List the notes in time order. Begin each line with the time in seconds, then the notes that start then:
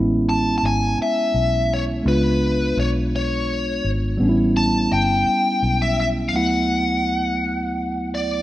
Already playing: A1 G#3 B3 C#4 E4
0.29 A5
0.58 A5
0.63 G#1 G#5
0.99 E5, muted fingered electric bass stroke
1.34 B1
1.74 C#5
2.03 C#2 G#3 B3 D4
2.08 F4 B4
2.77 B1 C#5
3.16 C#5
3.85 G#1
4.17 A1 G3 B3 C#4
4.23 D4
4.29 E4
4.57 A5
4.92 G1 G5
5.63 B1
5.82 E5
6.00 E5
6.29 D2 F5
6.33 F#3 A3 B3 E4 F#5
8.15 D5